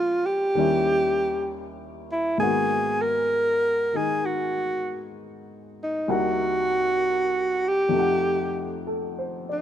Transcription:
Already playing: A#2 F3 G#3 C4 C#4 F4
0.26 G4
0.55 D#2 D#3 G3 C#4
0.59 E4
2.12 E4
2.38 G#2 D#3 A#3 B3 G#4
2.43 F#4
3.02 A#4
3.93 D#3 G#3 D#4 G#4
4.26 F#4
5.83 D#4
6.08 C2 C3 A#3 D#4 F#4 F#5
7.69 G4
7.89 F2 C3
7.94 A3 D#4
7.99 F#5
8.87 A4
9.19 C5
9.49 D#4 D5

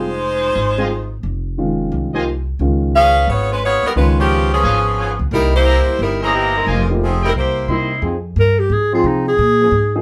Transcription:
Already playing: F1 G#3 D#4 F4 C5
0.55 G#1
0.78 G3 C4 F4 G#4 C5 D#5 G#5
1.23 F1
1.58 D#3 G#3 C#4 F4
1.92 C2
2.14 F3 A#3 D#4 F4 G4 C5 D#5 G#5
2.59 C#2 D#3 G#3 C#4 F4
2.95 C#4 G#4 B4 F5
3.27 G#1 B3 F4 G#4 C#5
3.52 G#3 C#4 F4 B4
3.64 B3 F4 G#4 C#5
3.83 G3 B3 D#4 A#4, muted upright bass stroke
3.96 C#2 D#3 G#3 C#4 F4 B4
4.19 F3 B3 C#4 G4
4.54 F3 B3 C#4 G#4
4.63 G#1 F4 B4 C#5 G#5
4.97 F4 B4 C#5 G#5
5.19 C#2
5.31 C2 G3 A#3 D#4 E4 A#4 D#5
5.56 A#3 E4 G4 C5
5.65 E4 C5 D#5 A#5
5.87 muted upright bass stroke
5.99 G1 G3 D#4 E4 A#4
6.21 E3 A#3 C#4 E4 G#4 C5 D#5 A#5
6.35 E3 A#3 D#4 G4
6.57 G#3 D#4 F4 A#4
6.67 F1 F4 C5 D#5 G#5
6.90 F3 A#3 D#4 G4
7.04 F3 C4 D#4 G#4
7.23 G3 C4 D#4 E4 A#4 C5 D#5 G5
7.35 C2 A#3 E4 G4 C5
7.68 C3 G3 A#3 D#4 E4 C5 D#5 C6
8.02 F2 F3 C4 D#4 G#4
8.36 G2 A#4
8.59 G4
8.70 G#2 G#4
8.93 F3 C4 D#4 F4 G#4
9.04 C3 D#4
9.28 G#4
9.39 A#2
9.60 F3 A#3 C#4 G#4
9.71 G#2
9.95 F3 A#3 D#4 G#4

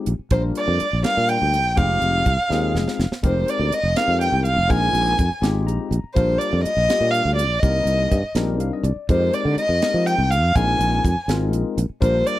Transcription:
Already playing: G#3 C4 D#4 F4 G4
0.06 A#1, closed hi-hat
0.19 muted fretless electric bass stroke
0.31 A#1 G3 A#3 D4 F4 A#4 C5, kick, closed hi-hat
0.55 D5, closed hi-hat
0.68 F2
0.80 muted fretless electric bass stroke, closed hi-hat
0.93 A#1
1.03 G3 A#3 D4 F4 A#4 F5, snare, closed hi-hat
1.17 A#2
1.29 G5, closed hi-hat
1.42 D2
1.54 closed hi-hat
1.65 A#1
1.75 F1 G#3 C4 D#4 F4 G4 F5, kick, closed hi-hat
2.02 F1, closed hi-hat
2.26 C2, kick, closed hi-hat
2.49 D#2 G#3 C4 D#4 F4 G#4, snare
2.75 F1, snare
2.88 snare
2.99 F1, snare
3.11 muted fretless electric bass stroke, snare
3.23 F1 G#3 C4 D#4 G4 A#4 C5, kick, closed hi-hat
3.48 D5, closed hi-hat
3.59 D2
3.71 D#5, muted fretless electric bass stroke, closed hi-hat
3.83 F1
3.96 G#3 C4 D#4 G4 A#4 F5, snare, closed hi-hat
4.08 F2
4.21 G5, closed hi-hat
4.32 C2
4.45 F5, closed hi-hat
4.56 F1
4.68 A#1 G#3 C4 D#4 F4 A#4 G#5, kick, closed hi-hat
4.93 A#1, closed hi-hat
5.19 F2, kick, closed hi-hat
5.30 muted fretless electric bass stroke
5.41 G#1 G#3 C4 D#4 F4 G4, snare, closed hi-hat
5.67 A#1 A#5, closed hi-hat
5.91 A#1, closed hi-hat
6.04 muted fretless electric bass stroke
6.14 A#1 G3 A#3 D4 F4 A#4 C5, kick, closed hi-hat
6.38 D5, closed hi-hat
6.53 F2
6.63 D#5, muted fretless electric bass stroke, closed hi-hat
6.77 A#1
6.89 G3 A#3 D4 F4 G4, snare, closed hi-hat
7.01 A#2
7.11 F5, closed hi-hat
7.25 D2
7.35 D5, closed hi-hat
7.50 A#1
7.60 C2 G3 A#3 C4 D#4 D#5, kick, closed hi-hat
7.64 A#4
7.85 C2, closed hi-hat
8.11 G2, kick, closed hi-hat
8.23 muted fretless electric bass stroke
8.35 A#1 G3 C4 D4 D#4 A#4, snare, closed hi-hat
8.59 C2 F5, closed hi-hat
8.73 D#5
8.83 C2 D5, closed hi-hat
8.96 muted fretless electric bass stroke
9.09 F2 G#3 C4 D#4 G4 A#4 C5, kick, closed hi-hat
9.33 D5, closed hi-hat
9.45 D3
9.56 D#5, muted fretless electric bass stroke, closed hi-hat
9.69 F2
9.81 G#3 C4 D#4 G4 A#4, snare, closed hi-hat
9.94 F3
10.06 G5, closed hi-hat
10.18 C2
10.31 F5, closed hi-hat
10.43 F2
10.55 A#1 G#3 C4 D#4 F4 A#4 G#5, kick, closed hi-hat
10.79 A#1, closed hi-hat
11.04 F2, kick, closed hi-hat
11.16 muted fretless electric bass stroke
11.28 G#1 G#3 C4 D#4 F4 A#4, snare, closed hi-hat
11.53 A#1, closed hi-hat
11.78 A#1, closed hi-hat
11.90 muted fretless electric bass stroke
12.00 A#1 G3 A#3 D4 F4 A#4 C5, kick, closed hi-hat
12.27 D5, closed hi-hat

